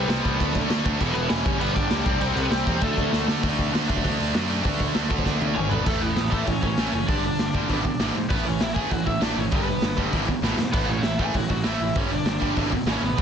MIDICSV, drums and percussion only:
0, 0, Header, 1, 2, 480
1, 0, Start_track
1, 0, Tempo, 304569
1, 1574, Time_signature, 4, 2, 24, 8
1, 20833, End_track
2, 0, Start_track
2, 0, Title_t, "Drums"
2, 156, Note_on_c, 9, 38, 99
2, 156, Note_on_c, 9, 49, 77
2, 313, Note_off_c, 9, 38, 0
2, 313, Note_off_c, 9, 49, 0
2, 395, Note_on_c, 9, 49, 64
2, 397, Note_on_c, 9, 36, 90
2, 553, Note_off_c, 9, 49, 0
2, 555, Note_off_c, 9, 36, 0
2, 636, Note_on_c, 9, 36, 99
2, 643, Note_on_c, 9, 49, 83
2, 794, Note_off_c, 9, 36, 0
2, 800, Note_off_c, 9, 49, 0
2, 864, Note_on_c, 9, 49, 68
2, 871, Note_on_c, 9, 36, 84
2, 1022, Note_off_c, 9, 49, 0
2, 1029, Note_off_c, 9, 36, 0
2, 1108, Note_on_c, 9, 38, 110
2, 1108, Note_on_c, 9, 49, 84
2, 1265, Note_off_c, 9, 38, 0
2, 1265, Note_off_c, 9, 49, 0
2, 1346, Note_on_c, 9, 49, 69
2, 1350, Note_on_c, 9, 36, 93
2, 1504, Note_off_c, 9, 49, 0
2, 1508, Note_off_c, 9, 36, 0
2, 1582, Note_on_c, 9, 49, 91
2, 1586, Note_on_c, 9, 36, 92
2, 1740, Note_off_c, 9, 49, 0
2, 1744, Note_off_c, 9, 36, 0
2, 1812, Note_on_c, 9, 49, 64
2, 1970, Note_off_c, 9, 49, 0
2, 2045, Note_on_c, 9, 38, 111
2, 2045, Note_on_c, 9, 49, 87
2, 2203, Note_off_c, 9, 38, 0
2, 2203, Note_off_c, 9, 49, 0
2, 2294, Note_on_c, 9, 49, 67
2, 2299, Note_on_c, 9, 36, 120
2, 2452, Note_off_c, 9, 49, 0
2, 2456, Note_off_c, 9, 36, 0
2, 2537, Note_on_c, 9, 49, 99
2, 2694, Note_off_c, 9, 49, 0
2, 2774, Note_on_c, 9, 36, 85
2, 2776, Note_on_c, 9, 49, 70
2, 2932, Note_off_c, 9, 36, 0
2, 2933, Note_off_c, 9, 49, 0
2, 3005, Note_on_c, 9, 38, 119
2, 3005, Note_on_c, 9, 49, 88
2, 3162, Note_off_c, 9, 38, 0
2, 3162, Note_off_c, 9, 49, 0
2, 3243, Note_on_c, 9, 49, 72
2, 3246, Note_on_c, 9, 36, 121
2, 3401, Note_off_c, 9, 49, 0
2, 3404, Note_off_c, 9, 36, 0
2, 3483, Note_on_c, 9, 49, 89
2, 3641, Note_off_c, 9, 49, 0
2, 3726, Note_on_c, 9, 49, 65
2, 3884, Note_off_c, 9, 49, 0
2, 3965, Note_on_c, 9, 38, 114
2, 3965, Note_on_c, 9, 49, 84
2, 4123, Note_off_c, 9, 38, 0
2, 4123, Note_off_c, 9, 49, 0
2, 4204, Note_on_c, 9, 49, 69
2, 4207, Note_on_c, 9, 36, 91
2, 4361, Note_off_c, 9, 49, 0
2, 4364, Note_off_c, 9, 36, 0
2, 4433, Note_on_c, 9, 49, 85
2, 4443, Note_on_c, 9, 36, 101
2, 4591, Note_off_c, 9, 49, 0
2, 4600, Note_off_c, 9, 36, 0
2, 4688, Note_on_c, 9, 36, 88
2, 4696, Note_on_c, 9, 49, 65
2, 4845, Note_off_c, 9, 36, 0
2, 4853, Note_off_c, 9, 49, 0
2, 4926, Note_on_c, 9, 38, 74
2, 5083, Note_off_c, 9, 38, 0
2, 5169, Note_on_c, 9, 38, 103
2, 5326, Note_off_c, 9, 38, 0
2, 5410, Note_on_c, 9, 46, 84
2, 5412, Note_on_c, 9, 36, 105
2, 5568, Note_off_c, 9, 46, 0
2, 5570, Note_off_c, 9, 36, 0
2, 5655, Note_on_c, 9, 36, 79
2, 5660, Note_on_c, 9, 46, 58
2, 5813, Note_off_c, 9, 36, 0
2, 5818, Note_off_c, 9, 46, 0
2, 5909, Note_on_c, 9, 38, 114
2, 5909, Note_on_c, 9, 46, 83
2, 6067, Note_off_c, 9, 38, 0
2, 6067, Note_off_c, 9, 46, 0
2, 6141, Note_on_c, 9, 36, 92
2, 6143, Note_on_c, 9, 46, 58
2, 6258, Note_off_c, 9, 36, 0
2, 6258, Note_on_c, 9, 36, 83
2, 6301, Note_off_c, 9, 46, 0
2, 6380, Note_off_c, 9, 36, 0
2, 6380, Note_on_c, 9, 36, 89
2, 6385, Note_on_c, 9, 46, 77
2, 6538, Note_off_c, 9, 36, 0
2, 6543, Note_off_c, 9, 46, 0
2, 6618, Note_on_c, 9, 46, 62
2, 6776, Note_off_c, 9, 46, 0
2, 6853, Note_on_c, 9, 38, 111
2, 6853, Note_on_c, 9, 46, 85
2, 7010, Note_off_c, 9, 38, 0
2, 7010, Note_off_c, 9, 46, 0
2, 7098, Note_on_c, 9, 46, 59
2, 7256, Note_off_c, 9, 46, 0
2, 7322, Note_on_c, 9, 46, 76
2, 7331, Note_on_c, 9, 36, 111
2, 7480, Note_off_c, 9, 46, 0
2, 7489, Note_off_c, 9, 36, 0
2, 7552, Note_on_c, 9, 46, 53
2, 7567, Note_on_c, 9, 36, 85
2, 7710, Note_off_c, 9, 46, 0
2, 7724, Note_off_c, 9, 36, 0
2, 7798, Note_on_c, 9, 38, 104
2, 7798, Note_on_c, 9, 46, 69
2, 7955, Note_off_c, 9, 38, 0
2, 7955, Note_off_c, 9, 46, 0
2, 8048, Note_on_c, 9, 46, 54
2, 8049, Note_on_c, 9, 36, 91
2, 8170, Note_off_c, 9, 36, 0
2, 8170, Note_on_c, 9, 36, 78
2, 8205, Note_off_c, 9, 46, 0
2, 8285, Note_on_c, 9, 38, 60
2, 8290, Note_off_c, 9, 36, 0
2, 8290, Note_on_c, 9, 36, 91
2, 8442, Note_off_c, 9, 38, 0
2, 8448, Note_off_c, 9, 36, 0
2, 8535, Note_on_c, 9, 48, 66
2, 8692, Note_off_c, 9, 48, 0
2, 8760, Note_on_c, 9, 45, 82
2, 8918, Note_off_c, 9, 45, 0
2, 9005, Note_on_c, 9, 43, 90
2, 9163, Note_off_c, 9, 43, 0
2, 9238, Note_on_c, 9, 57, 110
2, 9243, Note_on_c, 9, 36, 112
2, 9395, Note_off_c, 9, 57, 0
2, 9400, Note_off_c, 9, 36, 0
2, 9718, Note_on_c, 9, 38, 101
2, 9718, Note_on_c, 9, 46, 59
2, 9876, Note_off_c, 9, 38, 0
2, 9876, Note_off_c, 9, 46, 0
2, 9964, Note_on_c, 9, 36, 86
2, 10122, Note_off_c, 9, 36, 0
2, 10197, Note_on_c, 9, 46, 57
2, 10206, Note_on_c, 9, 36, 96
2, 10354, Note_off_c, 9, 46, 0
2, 10364, Note_off_c, 9, 36, 0
2, 10446, Note_on_c, 9, 36, 87
2, 10604, Note_off_c, 9, 36, 0
2, 10681, Note_on_c, 9, 38, 102
2, 10681, Note_on_c, 9, 46, 59
2, 10838, Note_off_c, 9, 38, 0
2, 10838, Note_off_c, 9, 46, 0
2, 11163, Note_on_c, 9, 46, 55
2, 11168, Note_on_c, 9, 36, 104
2, 11320, Note_off_c, 9, 46, 0
2, 11326, Note_off_c, 9, 36, 0
2, 11650, Note_on_c, 9, 38, 108
2, 11650, Note_on_c, 9, 46, 48
2, 11808, Note_off_c, 9, 38, 0
2, 11808, Note_off_c, 9, 46, 0
2, 11892, Note_on_c, 9, 36, 91
2, 12049, Note_off_c, 9, 36, 0
2, 12126, Note_on_c, 9, 46, 54
2, 12130, Note_on_c, 9, 36, 92
2, 12284, Note_off_c, 9, 46, 0
2, 12288, Note_off_c, 9, 36, 0
2, 12370, Note_on_c, 9, 36, 83
2, 12527, Note_off_c, 9, 36, 0
2, 12604, Note_on_c, 9, 38, 115
2, 12604, Note_on_c, 9, 46, 54
2, 12761, Note_off_c, 9, 38, 0
2, 12761, Note_off_c, 9, 46, 0
2, 13083, Note_on_c, 9, 46, 63
2, 13088, Note_on_c, 9, 36, 110
2, 13241, Note_off_c, 9, 46, 0
2, 13245, Note_off_c, 9, 36, 0
2, 13563, Note_on_c, 9, 38, 107
2, 13563, Note_on_c, 9, 46, 60
2, 13721, Note_off_c, 9, 38, 0
2, 13721, Note_off_c, 9, 46, 0
2, 13807, Note_on_c, 9, 36, 88
2, 13965, Note_off_c, 9, 36, 0
2, 14043, Note_on_c, 9, 46, 59
2, 14049, Note_on_c, 9, 36, 94
2, 14201, Note_off_c, 9, 46, 0
2, 14207, Note_off_c, 9, 36, 0
2, 14291, Note_on_c, 9, 36, 87
2, 14449, Note_off_c, 9, 36, 0
2, 14527, Note_on_c, 9, 38, 113
2, 14527, Note_on_c, 9, 46, 62
2, 14685, Note_off_c, 9, 38, 0
2, 14685, Note_off_c, 9, 46, 0
2, 15003, Note_on_c, 9, 46, 57
2, 15007, Note_on_c, 9, 36, 120
2, 15161, Note_off_c, 9, 46, 0
2, 15165, Note_off_c, 9, 36, 0
2, 15478, Note_on_c, 9, 38, 111
2, 15478, Note_on_c, 9, 46, 51
2, 15635, Note_off_c, 9, 38, 0
2, 15635, Note_off_c, 9, 46, 0
2, 15726, Note_on_c, 9, 36, 87
2, 15884, Note_off_c, 9, 36, 0
2, 15961, Note_on_c, 9, 46, 51
2, 15966, Note_on_c, 9, 36, 94
2, 16119, Note_off_c, 9, 46, 0
2, 16124, Note_off_c, 9, 36, 0
2, 16207, Note_on_c, 9, 36, 81
2, 16364, Note_off_c, 9, 36, 0
2, 16443, Note_on_c, 9, 38, 70
2, 16601, Note_off_c, 9, 38, 0
2, 16683, Note_on_c, 9, 38, 88
2, 16841, Note_off_c, 9, 38, 0
2, 16915, Note_on_c, 9, 57, 102
2, 16924, Note_on_c, 9, 36, 108
2, 17072, Note_off_c, 9, 57, 0
2, 17081, Note_off_c, 9, 36, 0
2, 17386, Note_on_c, 9, 38, 103
2, 17386, Note_on_c, 9, 46, 60
2, 17544, Note_off_c, 9, 38, 0
2, 17544, Note_off_c, 9, 46, 0
2, 17641, Note_on_c, 9, 36, 87
2, 17799, Note_off_c, 9, 36, 0
2, 17873, Note_on_c, 9, 46, 66
2, 17884, Note_on_c, 9, 36, 92
2, 18030, Note_off_c, 9, 46, 0
2, 18041, Note_off_c, 9, 36, 0
2, 18123, Note_on_c, 9, 36, 80
2, 18280, Note_off_c, 9, 36, 0
2, 18347, Note_on_c, 9, 38, 118
2, 18347, Note_on_c, 9, 46, 61
2, 18504, Note_off_c, 9, 38, 0
2, 18504, Note_off_c, 9, 46, 0
2, 18839, Note_on_c, 9, 46, 60
2, 18848, Note_on_c, 9, 36, 107
2, 18997, Note_off_c, 9, 46, 0
2, 19005, Note_off_c, 9, 36, 0
2, 19322, Note_on_c, 9, 38, 111
2, 19322, Note_on_c, 9, 46, 53
2, 19479, Note_off_c, 9, 38, 0
2, 19479, Note_off_c, 9, 46, 0
2, 19573, Note_on_c, 9, 36, 78
2, 19730, Note_off_c, 9, 36, 0
2, 19806, Note_on_c, 9, 46, 56
2, 19811, Note_on_c, 9, 36, 96
2, 19963, Note_off_c, 9, 46, 0
2, 19968, Note_off_c, 9, 36, 0
2, 20050, Note_on_c, 9, 36, 85
2, 20208, Note_off_c, 9, 36, 0
2, 20283, Note_on_c, 9, 38, 108
2, 20283, Note_on_c, 9, 46, 61
2, 20441, Note_off_c, 9, 38, 0
2, 20441, Note_off_c, 9, 46, 0
2, 20777, Note_on_c, 9, 46, 55
2, 20779, Note_on_c, 9, 36, 99
2, 20833, Note_off_c, 9, 36, 0
2, 20833, Note_off_c, 9, 46, 0
2, 20833, End_track
0, 0, End_of_file